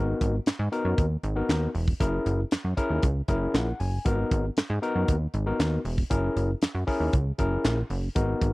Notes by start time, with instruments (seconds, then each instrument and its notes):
Already playing: analog synth bass G#1, tine electric piano B3 D#4 F#4 A#4
0.21 analog synth bass G#1, kick, closed hi-hat
0.46 analog synth bass G#2, snare, clap, closed hi-hat
0.59 analog synth bass G#2
0.72 tine electric piano B3 D#4 F#4 A#4, closed hi-hat
0.85 analog synth bass F#2
0.98 analog synth bass D#2, kick, closed hi-hat
1.23 analog synth bass G#1, closed hi-hat
1.36 tine electric piano B3 D#4 F#4 A#4
1.49 analog synth bass D#2, snare, clap, closed hi-hat
1.75 analog synth bass E1, open hi-hat
1.88 kick
2.00 analog synth bass F#1, tine electric piano C#4 E4 G#4 A#4, kick, closed hi-hat
2.26 analog synth bass F#1, closed hi-hat
2.51 analog synth bass F#2, snare, clap, closed hi-hat
2.64 analog synth bass F#2
2.77 tine electric piano C#4 E4 G#4 A#4, kick, closed hi-hat
2.90 analog synth bass D#2
3.03 analog synth bass C#2, kick, closed hi-hat
3.28 analog synth bass F#1, tine electric piano C#4 E4 G#4 A#4, kick, closed hi-hat
3.54 analog synth bass A#1, tine electric piano F#5, snare, clap, closed hi-hat
3.80 analog synth bass F#1, tine electric piano G#5, open hi-hat
4.05 analog synth bass G#1, tine electric piano B3 D#4 F#4 A#4, kick, closed hi-hat
4.31 analog synth bass G#1, kick, closed hi-hat
4.57 analog synth bass G#2, snare, clap, closed hi-hat
4.70 analog synth bass G#2
4.82 tine electric piano B3 D#4 F#4 A#4, closed hi-hat
4.95 analog synth bass F#2
5.08 analog synth bass D#2, kick, closed hi-hat
5.34 analog synth bass G#1, closed hi-hat
5.46 tine electric piano B3 D#4 F#4 A#4
5.60 analog synth bass D#2, snare, clap, closed hi-hat
5.85 analog synth bass E1, open hi-hat
5.98 kick
6.10 analog synth bass F#1, tine electric piano C#4 E4 G#4 A#4, kick, closed hi-hat
6.36 analog synth bass F#1, closed hi-hat
6.62 analog synth bass F#2, snare, clap, closed hi-hat
6.75 analog synth bass F#2
6.87 tine electric piano C#4 E4 G#4 A#4, kick, open hi-hat
7.00 analog synth bass D#2
7.13 analog synth bass C#2, kick, closed hi-hat
7.38 analog synth bass F#1, tine electric piano C#4 E4 G#4 A#4, kick, closed hi-hat
7.65 analog synth bass A#1, snare, clap, closed hi-hat
7.90 analog synth bass F#1, open hi-hat
8.15 analog synth bass G#1, tine electric piano B3 D#4 F#4 A#4, kick, closed hi-hat
8.41 analog synth bass G#1, kick, closed hi-hat